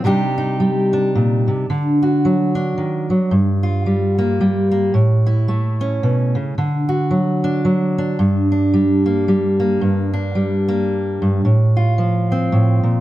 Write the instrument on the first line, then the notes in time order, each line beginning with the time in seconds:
steel-string acoustic guitar
0.04 C3 G3 D4 D#4 G4
0.38 D#4
0.60 G3
0.93 D4
1.15 A#2
1.48 C3
1.70 D3
2.02 F#4
2.25 F#3
2.55 D4
2.78 D#3
3.10 F#3
3.31 G2
3.63 F4
3.86 G3
4.18 A#3
4.41 G3
4.71 A#3
4.94 A2
5.26 E4
5.48 A3
5.81 C#4
6.03 B2
6.35 C#3
6.58 D3
6.89 F#4
7.11 F#3
7.44 D4
7.65 F#3
7.98 D4
8.19 G2
8.52 D4
8.74 G3
9.06 A#3
9.28 G3
9.60 A#3
9.81 G2
10.13 D4
10.35 G3
10.68 A#3
11.22 G2
11.45 A2
11.77 F4
11.98 F3
12.32 C4
12.52 A2
12.83 A#2